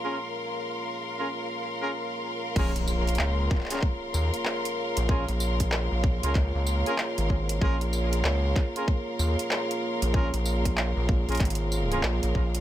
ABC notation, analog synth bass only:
X:1
M:4/4
L:1/16
Q:"Swing 16ths" 1/4=95
K:Bbm
V:1 name="Analog synth bass" clef=bass
z16 | B,,,4 D,,2 z4 E,, z4 B,,,- | B,,, B,,,4 B,,,2 D,,2 D,,2 z2 A,,,3 | B,,,4 D,,2 z4 E,, z4 B,,,- |
B,,, B,,,4 B,,,2 B,,, A,,,4 B,,, B,,, B,,,2 |]